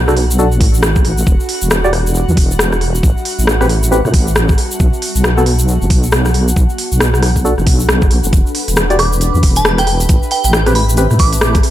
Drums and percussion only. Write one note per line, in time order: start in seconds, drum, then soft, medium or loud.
0.08 cross-stick medium
0.08 shaker soft
0.17 open hi-hat medium
0.31 shaker medium
0.39 shaker medium
0.52 shaker soft
0.61 kick loud
0.61 open hi-hat medium
0.74 shaker medium
0.83 cross-stick loud
0.83 shaker medium
0.96 kick loud
0.96 shaker soft
1.05 open hi-hat medium
1.18 shaker medium
1.27 kick loud
1.27 shaker medium
1.40 shaker soft
1.49 open hi-hat medium
1.61 shaker medium
1.71 cross-stick loud
1.71 shaker medium
1.84 shaker soft
1.93 cross-stick medium
1.93 open hi-hat medium
2.07 shaker medium
2.15 shaker medium
2.29 shaker soft
2.37 kick loud
2.37 open hi-hat loud
2.51 shaker medium
2.59 cross-stick loud
2.59 shaker medium
2.72 cross-stick medium
2.72 shaker soft
2.81 open hi-hat medium
2.95 shaker medium
3.03 kick loud
3.03 shaker medium
3.17 shaker soft
3.25 open hi-hat loud
3.39 shaker medium
3.47 cross-stick loud
3.47 shaker medium
3.61 cross-stick medium
3.61 shaker soft
3.69 open hi-hat medium
3.83 shaker medium
3.92 shaker medium
4.05 cross-stick soft
4.05 shaker soft
4.14 kick loud
4.14 open hi-hat loud
4.27 shaker medium
4.36 cross-stick loud
4.36 shaker medium
4.49 kick loud
4.49 shaker soft
4.58 open hi-hat medium
4.71 shaker medium
4.80 kick loud
4.80 shaker medium
4.93 shaker soft
5.02 open hi-hat loud
5.15 shaker medium
5.24 cross-stick loud
5.24 shaker medium
5.38 shaker soft
5.46 open hi-hat medium
5.59 shaker medium
5.68 shaker medium
5.82 shaker soft
5.90 kick loud
5.90 open hi-hat loud
6.03 shaker medium
6.12 cross-stick loud
6.12 shaker medium
6.25 cross-stick medium
6.25 shaker soft
6.34 open hi-hat medium
6.48 shaker medium
6.56 kick loud
6.56 shaker medium
6.69 shaker soft
6.78 open hi-hat loud
6.92 shaker medium
7.00 cross-stick loud
7.00 shaker medium
7.14 cross-stick medium
7.14 shaker soft
7.23 cross-stick medium
7.23 open hi-hat medium
7.36 kick medium
7.36 shaker medium
7.45 shaker medium
7.58 cross-stick soft
7.58 shaker soft
7.67 kick loud
7.67 open hi-hat loud
7.80 shaker medium
7.89 cross-stick loud
7.89 shaker medium
8.02 kick loud
8.02 shaker soft
8.11 open hi-hat medium
8.24 shaker medium
8.33 kick loud
8.33 closed hi-hat medium
8.33 shaker medium
8.46 shaker soft
8.55 open hi-hat loud
8.68 closed hi-hat medium
8.68 shaker medium
8.76 cross-stick loud
8.76 shaker medium
8.90 closed hi-hat soft
8.90 shaker soft
8.99 cross-stick medium
8.99 open hi-hat medium
9.13 shaker medium
9.21 closed hi-hat medium
9.21 shaker medium
9.35 shaker soft
9.43 kick loud
9.43 open hi-hat loud
9.56 closed hi-hat medium
9.56 shaker medium
9.65 cross-stick loud
9.65 shaker medium
9.78 cross-stick medium
9.78 closed hi-hat soft
9.78 shaker soft
9.87 open hi-hat medium
10.00 closed hi-hat soft
10.00 shaker medium
10.09 kick loud
10.09 closed hi-hat medium
10.09 shaker medium
10.23 shaker soft
10.31 open hi-hat loud
10.44 closed hi-hat medium
10.44 shaker medium
10.53 cross-stick loud
10.53 shaker medium
10.66 cross-stick medium
10.66 closed hi-hat soft
10.66 shaker soft
10.75 open hi-hat medium
10.89 shaker medium
10.97 closed hi-hat medium
10.97 shaker medium
11.11 cross-stick soft
11.11 shaker soft
11.19 kick loud
11.19 open hi-hat loud
11.33 closed hi-hat medium
11.33 shaker medium
11.41 cross-stick loud
11.41 shaker medium
11.55 kick loud
11.55 closed hi-hat soft
11.55 shaker soft
11.63 open hi-hat medium